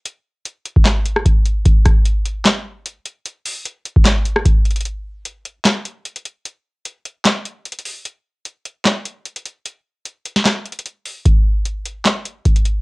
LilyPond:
\new DrumStaff \with { instrumentName = "Drums" } \drummode { \time 4/4 \tempo 4 = 150 hh4 hh8 hh16 bd16 <hc hh sn>8 hh16 ss16 <hh bd>8 hh8 | <hh bd>8 <hh bd ss>8 hh8 hh8 <hc hh sn>4 hh8 hh8 | hh8 hho8 hh8 hh16 bd16 <hc hh sn>8 hh16 ss16 <hh bd>8 hh32 hh32 hh32 hh32 | hh4 hh8 hh8 <hc hh sn>8 hh8 hh16 hh16 hh8 |
hh4 hh8 hh8 <hc hh sn>8 hh8 \tuplet 3/2 { hh16 hh16 hh16 hho16 r16 r16 } | hh4 hh8 hh8 <hc hh sn>8 hh8 hh16 hh16 hh8 | hh4 hh8 hh16 sn16 \tuplet 3/2 { <hc hh sn>16 r16 r16 hh16 hh16 hh16 } hh8 hho8 | <hh bd>4 hh8 hh8 <hc hh sn>8 hh8 <hh bd>16 hh16 hh8 | }